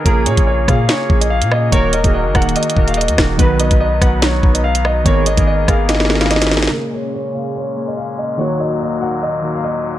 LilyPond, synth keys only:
\new Staff \with { instrumentName = "Synth keys" } { \time 4/4 \key bes \phrygian \tempo 4 = 144 <des bes f' aes'>8 r16 <des bes f' aes'>8 r16 <des bes f' aes'>4~ <des bes f' aes'>16 r4 r16 | <ees bes ges' bes'>8 r16 <ees bes ges' aes'>8 r16 <ees bes ges' bes'>8. r16 <ees bes ges' bes'>8. r16 <ees bes ges' bes'>16 r16 | <dis b fis' b'>8 r16 <dis b fis' b'>8 r16 <dis b fis' b'>4~ <dis b fis' b'>16 r4 r16 | <ees ces' aes' bes'>8 r16 <ees ces' aes' bes'>8 r16 <ees ces' aes' bes'>8. r16 <ees ces' aes' bes'>8. r16 <ees ces' aes' bes'>16 r16 |
<des bes aes'>4 r8 <des bes aes'>8. r16 <des bes aes'>4 r8 | <ees bes ges'>4 r8 <ees bes ges'>16 <ees bes ges'>8 r16 <ees bes ges'>4 r8 | }